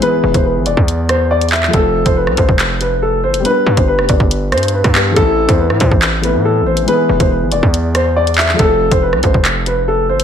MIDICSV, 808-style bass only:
0, 0, Header, 1, 2, 480
1, 0, Start_track
1, 0, Tempo, 428571
1, 25, Time_signature, 4, 2, 24, 8
1, 11467, End_track
2, 0, Start_track
2, 0, Title_t, "808-style bass"
2, 0, Program_c, 0, 38
2, 264, Note_on_c, 0, 28, 106
2, 379, Note_off_c, 0, 28, 0
2, 384, Note_on_c, 0, 28, 103
2, 624, Note_on_c, 0, 32, 101
2, 641, Note_off_c, 0, 28, 0
2, 744, Note_on_c, 0, 28, 97
2, 761, Note_off_c, 0, 32, 0
2, 858, Note_off_c, 0, 28, 0
2, 865, Note_on_c, 0, 40, 103
2, 1901, Note_off_c, 0, 40, 0
2, 1944, Note_on_c, 0, 29, 114
2, 2290, Note_off_c, 0, 29, 0
2, 2304, Note_on_c, 0, 29, 101
2, 2544, Note_on_c, 0, 36, 98
2, 2561, Note_off_c, 0, 29, 0
2, 2658, Note_off_c, 0, 36, 0
2, 2665, Note_on_c, 0, 33, 101
2, 2780, Note_off_c, 0, 33, 0
2, 2784, Note_on_c, 0, 29, 111
2, 3624, Note_on_c, 0, 31, 102
2, 3641, Note_off_c, 0, 29, 0
2, 3744, Note_on_c, 0, 29, 99
2, 3761, Note_off_c, 0, 31, 0
2, 3858, Note_off_c, 0, 29, 0
2, 4104, Note_on_c, 0, 43, 107
2, 4219, Note_off_c, 0, 43, 0
2, 4225, Note_on_c, 0, 31, 104
2, 4465, Note_on_c, 0, 29, 101
2, 4481, Note_off_c, 0, 31, 0
2, 4578, Note_off_c, 0, 29, 0
2, 4585, Note_on_c, 0, 31, 103
2, 4700, Note_off_c, 0, 31, 0
2, 4705, Note_on_c, 0, 31, 107
2, 5065, Note_on_c, 0, 43, 99
2, 5082, Note_off_c, 0, 31, 0
2, 5406, Note_off_c, 0, 43, 0
2, 5425, Note_on_c, 0, 43, 103
2, 5770, Note_off_c, 0, 43, 0
2, 5784, Note_on_c, 0, 33, 115
2, 6130, Note_off_c, 0, 33, 0
2, 6145, Note_on_c, 0, 40, 106
2, 6385, Note_on_c, 0, 45, 102
2, 6401, Note_off_c, 0, 40, 0
2, 6498, Note_off_c, 0, 45, 0
2, 6505, Note_on_c, 0, 45, 104
2, 6620, Note_off_c, 0, 45, 0
2, 6625, Note_on_c, 0, 33, 107
2, 7104, Note_on_c, 0, 45, 100
2, 7121, Note_off_c, 0, 33, 0
2, 7404, Note_on_c, 0, 33, 98
2, 7421, Note_off_c, 0, 45, 0
2, 7689, Note_off_c, 0, 33, 0
2, 7944, Note_on_c, 0, 28, 107
2, 8059, Note_off_c, 0, 28, 0
2, 8064, Note_on_c, 0, 28, 106
2, 8304, Note_on_c, 0, 32, 96
2, 8320, Note_off_c, 0, 28, 0
2, 8423, Note_on_c, 0, 28, 100
2, 8440, Note_off_c, 0, 32, 0
2, 8538, Note_off_c, 0, 28, 0
2, 8544, Note_on_c, 0, 40, 103
2, 9581, Note_off_c, 0, 40, 0
2, 9624, Note_on_c, 0, 29, 114
2, 9969, Note_off_c, 0, 29, 0
2, 9984, Note_on_c, 0, 29, 106
2, 10224, Note_on_c, 0, 36, 101
2, 10241, Note_off_c, 0, 29, 0
2, 10338, Note_off_c, 0, 36, 0
2, 10345, Note_on_c, 0, 33, 105
2, 10459, Note_off_c, 0, 33, 0
2, 10464, Note_on_c, 0, 29, 108
2, 11304, Note_on_c, 0, 31, 105
2, 11321, Note_off_c, 0, 29, 0
2, 11424, Note_on_c, 0, 29, 102
2, 11441, Note_off_c, 0, 31, 0
2, 11467, Note_off_c, 0, 29, 0
2, 11467, End_track
0, 0, End_of_file